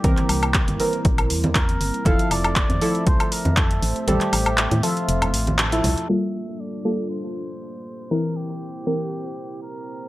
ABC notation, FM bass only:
X:1
M:4/4
L:1/16
Q:"Swing 16ths" 1/4=119
K:Cmix
V:1 name="FM bass" clef=bass
C,, z C,,3 G,,, z2 B,,,2 E,,4 G,,, z | F,,, z F,,,3 F,, z2 C,, z2 F,,3 A,,, z | A,,, z A,,,3 A,, z2 F,,,2 A,,,4 C,, z | z16 |
z16 |]